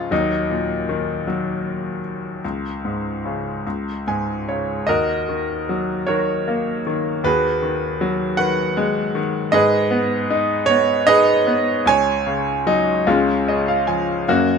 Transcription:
0.00 0.12 G#2 soft
0.00 0.13 C#3 soft
0.00 0.13 F3 soft
0.00 0.12 D#4 medium
0.00 0.13 F4 medium
0.11 2.40 D#2 soft
0.11 1.26 F#3 soft
0.11 4.03 D#4 medium
0.50 2.00 A#2 soft
0.89 2.40 D#3 soft
1.27 2.40 F#3 soft
2.45 3.62 C#2 soft
2.85 3.63 G#2 soft
3.25 3.65 C#3 soft
3.67 4.84 C#2 soft
4.07 4.85 G#2 soft
4.07 4.45 G#5 soft
4.48 4.87 C#3 soft
4.48 4.85 C#5 soft
4.87 7.21 D#2 soft
4.87 6.04 F#4 medium
4.87 6.04 A#4 medium
4.87 6.10 D#5 medium
5.29 6.06 D#3 soft
5.69 7.21 F#3 soft
6.07 6.85 D#3 soft
6.07 7.21 F#4 soft
6.07 7.21 A#4 soft
6.07 6.81 C#5 medium
6.48 7.23 A#3 soft
6.87 7.24 D#3 soft
7.24 9.48 D#2 soft
7.24 8.35 F#4 soft
7.24 8.35 G#4 soft
7.24 8.34 B4 medium
7.63 8.37 D#3 soft
8.01 9.48 F#3 medium
8.37 9.14 D#3 soft
8.37 9.49 B4 soft
8.37 9.19 F#5 medium
8.77 9.50 G#3 medium
9.15 9.52 D#3 medium
9.52 11.82 G#2 medium
9.52 10.65 G#4 medium
9.52 10.65 B4 medium
9.52 10.71 D#5 medium
9.91 10.68 B3 medium
10.30 11.06 D#4 medium
10.66 11.45 B3 medium
10.66 11.07 C#5 medium
11.07 11.84 D#4 medium
11.07 11.82 G#4 medium
11.07 11.82 B4 medium
11.07 11.88 D#5 loud
11.47 11.85 B3 medium
11.86 13.03 C#2 medium
11.86 13.85 C#5 medium
11.86 13.84 G#5 loud
12.27 13.04 C#3 soft
12.67 13.06 F#3 soft
12.67 13.04 D#4 medium
13.07 14.24 C#2 medium
13.07 14.24 G#3 medium
13.07 14.24 C#4 medium
13.07 14.31 F4 medium
13.48 14.26 C#3 soft
13.48 13.67 D#5 medium
13.68 13.87 F5 medium
13.87 14.26 F3 soft
13.87 14.25 G#5 soft
14.28 14.58 F#2 soft
14.28 14.58 A#3 medium
14.28 14.58 C#4 medium
14.28 14.58 F#4 medium

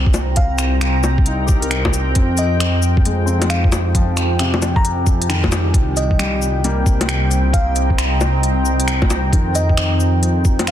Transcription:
0.00 2.14 C2 medium
0.00 3.62 C4 medium
0.00 0.72 F4 medium
0.00 10.71 G5 medium
0.00 2.80 A#5 medium
0.06 kick loud
0.14 closed hi-hat soft
0.14 low bongo medium
0.14 cabasa medium
0.36 0.74 F5 loud
0.36 kick loud
0.36 closed hi-hat medium
0.58 finger snap medium
0.58 closed hi-hat medium
0.58 cabasa medium
0.81 finger snap loud
0.81 closed hi-hat medium
1.04 low bongo medium
1.04 cabasa medium
1.18 kick loud
1.26 2.35 D#4 medium
1.26 closed hi-hat medium
1.46 2.51 G4 medium
1.46 kick loud
1.46 cabasa medium
1.60 2.62 A#4 medium
1.60 closed hi-hat medium
1.71 finger snap loud
1.71 closed hi-hat medium
1.85 kick medium
1.85 low bongo medium
1.94 closed hi-hat soft
1.94 cabasa medium
2.15 5.72 F2 medium
2.15 3.24 C4 medium
2.15 6.64 F4 medium
2.15 kick loud
2.15 closed hi-hat medium
2.37 3.02 D#5 medium
2.37 closed hi-hat medium
2.37 cabasa medium
2.60 finger snap loud
2.60 closed hi-hat medium
2.83 cabasa medium
2.97 kick loud
3.05 4.75 G#3 medium
3.05 closed hi-hat medium
3.26 4.88 C4 medium
3.26 cabasa medium
3.38 5.03 D#4 medium
3.38 closed hi-hat medium
3.38 low bongo medium
3.50 3.74 F5 medium
3.50 finger snap loud
3.50 closed hi-hat medium
3.64 kick loud
3.72 closed hi-hat soft
3.72 low bongo medium
3.72 cabasa medium
3.78 5.74 G#5 medium
3.95 5.65 F3 medium
3.95 kick loud
3.95 closed hi-hat medium
4.17 finger snap medium
4.17 closed hi-hat medium
4.17 cabasa medium
4.39 5.92 C3 medium
4.39 finger snap loud
4.39 closed hi-hat medium
4.54 low bongo medium
4.62 closed hi-hat soft
4.62 low bongo medium
4.62 cabasa medium
4.76 5.07 A#5 medium
4.76 kick loud
4.85 closed hi-hat medium
5.07 kick loud
5.07 cabasa medium
5.22 closed hi-hat medium
5.29 5.92 D#3 medium
5.29 finger snap medium
5.29 closed hi-hat medium
5.43 kick medium
5.43 low bongo medium
5.48 6.09 G3 medium
5.52 closed hi-hat soft
5.52 low bongo medium
5.52 cabasa medium
5.74 9.31 C2 medium
5.74 10.71 C4 medium
5.74 kick loud
5.74 closed hi-hat medium
5.97 6.61 D#5 medium
5.97 closed hi-hat medium
5.97 cabasa medium
6.11 kick medium
6.15 6.63 G3 medium
6.15 10.71 C5 medium
6.15 10.71 D#5 medium
6.15 finger snap loud
6.15 closed hi-hat medium
6.42 10.62 A#5 medium
6.42 cabasa medium
6.64 8.34 G3 medium
6.64 8.34 A#3 medium
6.64 closed hi-hat medium
6.86 kick loud
6.86 cabasa medium
7.01 closed hi-hat medium
7.01 low bongo medium
7.09 finger snap loud
7.09 closed hi-hat medium
7.31 closed hi-hat soft
7.31 cabasa medium
7.53 7.90 F5 medium
7.53 kick loud
7.53 closed hi-hat medium
7.76 closed hi-hat medium
7.76 cabasa medium
7.90 kick medium
7.98 finger snap loud
7.98 closed hi-hat medium
8.21 low bongo soft
8.21 cabasa medium
8.43 closed hi-hat medium
8.66 cabasa medium
8.80 closed hi-hat medium
8.88 finger snap loud
8.88 closed hi-hat medium
9.02 kick loud
9.02 low bongo medium
9.10 closed hi-hat soft
9.10 low bongo medium
9.10 cabasa medium
9.32 10.71 F2 medium
9.32 10.71 D#3 medium
9.32 10.71 F4 medium
9.32 kick loud
9.32 closed hi-hat medium
9.55 10.19 D#5 medium
9.55 closed hi-hat medium
9.55 cabasa medium
9.69 kick medium
9.77 finger snap loud
9.77 closed hi-hat medium
10.00 cabasa medium
10.23 closed hi-hat medium
10.45 kick loud
10.45 cabasa medium
10.59 closed hi-hat medium
10.59 low bongo medium
10.67 finger snap loud
10.67 closed hi-hat medium

